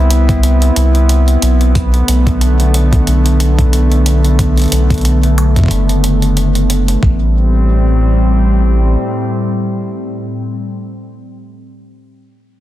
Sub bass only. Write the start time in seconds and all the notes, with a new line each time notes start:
Already playing: C2
0.76 C2
1.42 B1
2.08 B1
3.07 B1
4.72 B1
5.71 F#1
7.03 A1